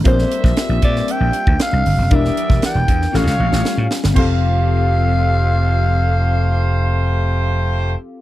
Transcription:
<<
  \new Staff \with { instrumentName = "Alto saxophone" } { \time 4/4 \key f \major \tempo 4 = 117 c''4 r8 d''8 g''4 f''4 | e''4 g''4 f''4. r8 | f''1~ | f''1 | }
  \new Staff \with { instrumentName = "Horn section" } { \time 4/4 \key f \major <g' c'' e''>2.~ <g' c'' e''>8 r8 | <g' bes' d''>4. r8 <f' g' cis''>4. r8 | <a g' c''>1~ | <a g' c''>1 | }
  \new Staff \with { instrumentName = "FM electric piano" } { \time 4/4 \key f \major <c' f' g' bes' des'' d''>1 | <d' e' g' bes' d''>2 <cis' f' g' a' f''>2 | <c' f' g' a' f''>1~ | <c' f' g' a' f''>1 | }
  \new Staff \with { instrumentName = "Analog synth pad" } { \time 4/4 \key f \major << { d'1~ | d'2 cis'2 | <f c' f' g' a'>1~ | <f c' f' g' a'>1 | } \\ { <g bes>1 | <e g>2 a2 | r1 | r1 | } >> }
  \new Staff \with { instrumentName = "Slap bass" } { \clef bass \time 4/4 \key f \major bes,,8 r16 bes,,16 r16 bes,,16 bes,8 r16 bes,,16 r16 d,16 r16 c,16 g,,16 f,,16 | e,,8 r16 e,,16 r16 e,,16 e,8 a,,16 cis,16 bes,,16 a,,16 r16 a,16 r16 g,,16 | f,,1~ | f,,1 | }
  \new DrumStaff \with { instrumentName = "Drums" } \drummode { \time 4/4 <hh bd>16 sn16 hh16 <bd sn>16 <hh sn>8 <hh bd>16 sn16 hh8 hh16 bd16 <hh sn>8 hho8 | <hh bd>16 sn16 hh16 <bd sn>16 <hh sn>8 <hh bd>16 sn16 sn16 sn8 sn16 sn8 sn16 sn16 | <cymc bd>4 r4 r4 r4 | r4 r4 r4 r4 | }
>>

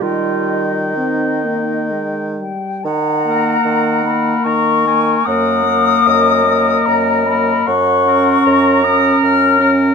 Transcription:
<<
  \new Staff \with { instrumentName = "Flute" } { \time 3/4 \key ees \major \tempo 4 = 75 ees''4 ees''4. g''8 | \key ees \minor bes''4. ces'''8 des'''4 | ees'''2 bes''8 ces'''8 | des'''4. ees'''8 f'''8 r8 | }
  \new Staff \with { instrumentName = "Clarinet" } { \time 3/4 \key ees \major f'8 r8 ees'4 r4 | \key ees \minor ges''2 bes''8 aes''8 | ges''4 ees''2 | ges''4 bes''4. r8 | }
  \new Staff \with { instrumentName = "Oboe" } { \time 3/4 \key ees \major g''2~ g''8 r8 | \key ees \minor r8 bes'4 bes'4 bes'8 | bes'8 bes'4 bes'4 bes'8 | r8 bes'4 bes'4 bes'8 | }
  \new Staff \with { instrumentName = "French horn" } { \time 3/4 \key ees \major g4 c'8 bes8 aes8 g8 | \key ees \minor r8 bes4 bes4 bes8 | bes8 bes4 bes4 bes8 | r8 des'4 des'4 des'8 | }
  \new Staff \with { instrumentName = "Bassoon" } { \clef bass \time 3/4 \key ees \major ees2~ ees8 r8 | \key ees \minor ees4 ees4 ees4 | ges,4 ges,4 ges,4 | ges,4 ges,4 ges,4 | }
>>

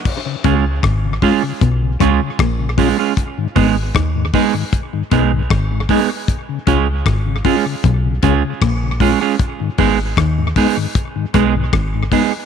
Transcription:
<<
  \new Staff \with { instrumentName = "Clean electric guitar" } { \time 4/4 \key cis \mixolydian \tempo 4 = 77 r8 <gis cis' eis' gis'>16 r8. <gis cis' eis' gis'>16 r8. <gis cis' eis' gis'>16 r8. <gis cis' eis' gis'>16 <gis cis' eis' gis'>16 | r8 <gis b dis' gis'>16 r8. <gis b dis' gis'>16 r8. <gis b dis' gis'>16 r8. <gis b dis' gis'>16 r16 | r8 <gis cis' eis' gis'>16 r8. <gis cis' eis' gis'>16 r8. <gis cis' eis' gis'>16 r8. <gis cis' eis' gis'>16 <gis cis' eis' gis'>16 | r8 <gis b dis' gis'>16 r8. <gis b dis' gis'>16 r8. <gis b dis' gis'>16 r8. <gis b dis' gis'>16 r16 | }
  \new Staff \with { instrumentName = "Tonewheel organ" } { \time 4/4 \key cis \mixolydian r8 <gis cis' eis'>8 r8 <gis cis' eis'>8 r8 <gis cis' eis'>8 r8 <gis cis' eis'>8 | r8 <gis b dis'>8 r8 <gis b dis'>8 r8 <gis b dis'>8 r8 <gis b dis'>8 | r8 <gis cis' eis'>8 r8 <gis cis' eis'>8 r8 <gis cis' eis'>8 r8 <gis cis' eis'>8 | r8 <gis b dis'>8 r8 <gis b dis'>8 r8 <gis b dis'>8 r8 <gis b dis'>8 | }
  \new Staff \with { instrumentName = "Tonewheel organ" } { \clef bass \time 4/4 \key cis \mixolydian r16 cis16 r8. cis16 r16 cis16 r16 cis16 r16 cis16 r16 cis16 r8 | r16 <gis, dis>16 r8. <gis, dis>16 r16 <gis, dis>16 r16 <gis, dis>16 r16 <gis, dis>16 r16 <gis, dis>16 r8 | r16 cis16 r8. cis16 r16 cis16 r16 cis16 r16 cis16 r16 cis16 r8 | r16 <gis, dis>16 r8. <gis, dis>16 r16 <gis, dis>16 r16 <gis, dis>16 r16 <gis, dis>16 r16 <gis, dis>16 r8 | }
  \new Staff \with { instrumentName = "Clean electric guitar" } { \clef bass \time 4/4 \key cis \mixolydian r8 cis8 gis,8 r8 b,8 cis16 r16 ais,8 r8 | r8 gis,8 dis8 r4 b,8 gis,8 r8 | r8 cis8 gis,8 r8 b,8 cis16 r16 ais,8 r8 | r8 gis,8 dis8 r4 b,8 gis,8 r8 | }
  \new Staff \with { instrumentName = "Fingered electric bass" } { \clef bass \time 4/4 \key cis \mixolydian r8 cis,8 gis,,8 r8 b,,8 cis,16 r16 ais,,8. r16 | r8 gis,,8 dis,8 r4 b,,8 gis,,8 r8 | r8 cis,8 gis,,8 r8 b,,8 cis,16 r16 ais,,8. r16 | r8 gis,,8 dis,8 r4 b,,8 gis,,8 r8 | }
  \new DrumStaff \with { instrumentName = "Drums" } \drummode { \time 4/4 <cymc bd>8 <hh bd>8 <bd ss>8 <hho bd>8 <hhp bd>8 <hh bd ss>8 <bd ss>8 <hho bd>8 | <hhp bd>8 <hho bd>8 <hhp bd ss>8 <hho bd>8 <hhp bd>8 <hh bd>8 <bd ss>8 <hho bd>8 | <hhp bd>8 <hh bd>8 <bd ss>8 <hho bd>8 <hhp bd>8 <hh bd>8 <bd ss>8 <hho bd>8 | <hhp bd>8 <hho bd>8 <hhp bd ss>8 <hho bd>8 <hhp bd>8 <hh bd ss>8 <bd ss>8 <hho bd>8 | }
>>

